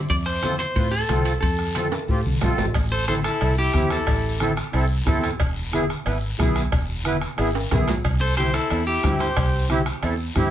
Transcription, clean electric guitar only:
0, 0, Header, 1, 2, 480
1, 0, Start_track
1, 0, Key_signature, 0, "minor"
1, 0, Tempo, 330943
1, 148, Time_signature, 4, 2, 24, 8
1, 15236, End_track
2, 0, Start_track
2, 0, Title_t, "Clean electric guitar"
2, 0, Program_c, 0, 27
2, 142, Note_on_c, 0, 74, 117
2, 215, Note_off_c, 0, 74, 0
2, 377, Note_on_c, 0, 72, 102
2, 836, Note_off_c, 0, 72, 0
2, 854, Note_on_c, 0, 72, 86
2, 1326, Note_on_c, 0, 69, 85
2, 1356, Note_off_c, 0, 72, 0
2, 2007, Note_off_c, 0, 69, 0
2, 2039, Note_on_c, 0, 69, 78
2, 3437, Note_off_c, 0, 69, 0
2, 4232, Note_on_c, 0, 72, 109
2, 4449, Note_off_c, 0, 72, 0
2, 4466, Note_on_c, 0, 72, 106
2, 4539, Note_off_c, 0, 72, 0
2, 4710, Note_on_c, 0, 69, 92
2, 5157, Note_off_c, 0, 69, 0
2, 5200, Note_on_c, 0, 67, 96
2, 5642, Note_off_c, 0, 67, 0
2, 5687, Note_on_c, 0, 69, 74
2, 6349, Note_off_c, 0, 69, 0
2, 11906, Note_on_c, 0, 72, 107
2, 12128, Note_off_c, 0, 72, 0
2, 12145, Note_on_c, 0, 72, 99
2, 12371, Note_off_c, 0, 72, 0
2, 12382, Note_on_c, 0, 69, 81
2, 12832, Note_off_c, 0, 69, 0
2, 12863, Note_on_c, 0, 67, 95
2, 13313, Note_off_c, 0, 67, 0
2, 13349, Note_on_c, 0, 72, 83
2, 14019, Note_off_c, 0, 72, 0
2, 15236, End_track
0, 0, End_of_file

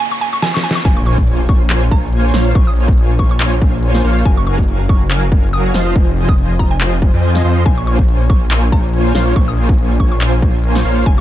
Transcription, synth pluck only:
0, 0, Header, 1, 2, 480
1, 0, Start_track
1, 0, Key_signature, -5, "minor"
1, 0, Tempo, 425532
1, 959, Time_signature, 4, 2, 24, 8
1, 12641, End_track
2, 0, Start_track
2, 0, Title_t, "Synth pluck"
2, 0, Program_c, 0, 84
2, 131, Note_on_c, 0, 85, 90
2, 200, Note_off_c, 0, 85, 0
2, 240, Note_on_c, 0, 80, 94
2, 345, Note_off_c, 0, 80, 0
2, 372, Note_on_c, 0, 85, 99
2, 440, Note_off_c, 0, 85, 0
2, 478, Note_on_c, 0, 80, 103
2, 584, Note_off_c, 0, 80, 0
2, 612, Note_on_c, 0, 85, 92
2, 680, Note_off_c, 0, 85, 0
2, 718, Note_on_c, 0, 80, 97
2, 824, Note_off_c, 0, 80, 0
2, 851, Note_on_c, 0, 85, 97
2, 920, Note_off_c, 0, 85, 0
2, 960, Note_on_c, 0, 80, 96
2, 1065, Note_off_c, 0, 80, 0
2, 1092, Note_on_c, 0, 85, 87
2, 1160, Note_off_c, 0, 85, 0
2, 1200, Note_on_c, 0, 85, 76
2, 1284, Note_off_c, 0, 85, 0
2, 1680, Note_on_c, 0, 85, 83
2, 1810, Note_off_c, 0, 85, 0
2, 2160, Note_on_c, 0, 82, 94
2, 2639, Note_off_c, 0, 82, 0
2, 2881, Note_on_c, 0, 85, 94
2, 2986, Note_off_c, 0, 85, 0
2, 3014, Note_on_c, 0, 87, 89
2, 3492, Note_off_c, 0, 87, 0
2, 3599, Note_on_c, 0, 85, 83
2, 3684, Note_off_c, 0, 85, 0
2, 3733, Note_on_c, 0, 85, 77
2, 3801, Note_off_c, 0, 85, 0
2, 4799, Note_on_c, 0, 80, 96
2, 4905, Note_off_c, 0, 80, 0
2, 4934, Note_on_c, 0, 85, 91
2, 5001, Note_off_c, 0, 85, 0
2, 5041, Note_on_c, 0, 85, 77
2, 5124, Note_off_c, 0, 85, 0
2, 5520, Note_on_c, 0, 85, 87
2, 5650, Note_off_c, 0, 85, 0
2, 6240, Note_on_c, 0, 87, 95
2, 6369, Note_off_c, 0, 87, 0
2, 7091, Note_on_c, 0, 87, 87
2, 7417, Note_off_c, 0, 87, 0
2, 7437, Note_on_c, 0, 82, 87
2, 7543, Note_off_c, 0, 82, 0
2, 7568, Note_on_c, 0, 80, 84
2, 8236, Note_off_c, 0, 80, 0
2, 8637, Note_on_c, 0, 80, 94
2, 8744, Note_off_c, 0, 80, 0
2, 8771, Note_on_c, 0, 85, 87
2, 8840, Note_off_c, 0, 85, 0
2, 8879, Note_on_c, 0, 85, 76
2, 8963, Note_off_c, 0, 85, 0
2, 9358, Note_on_c, 0, 85, 86
2, 9489, Note_off_c, 0, 85, 0
2, 9840, Note_on_c, 0, 82, 92
2, 10319, Note_off_c, 0, 82, 0
2, 10559, Note_on_c, 0, 85, 99
2, 10665, Note_off_c, 0, 85, 0
2, 10693, Note_on_c, 0, 87, 95
2, 11172, Note_off_c, 0, 87, 0
2, 11279, Note_on_c, 0, 85, 82
2, 11364, Note_off_c, 0, 85, 0
2, 11411, Note_on_c, 0, 85, 74
2, 11480, Note_off_c, 0, 85, 0
2, 12478, Note_on_c, 0, 80, 97
2, 12584, Note_off_c, 0, 80, 0
2, 12641, End_track
0, 0, End_of_file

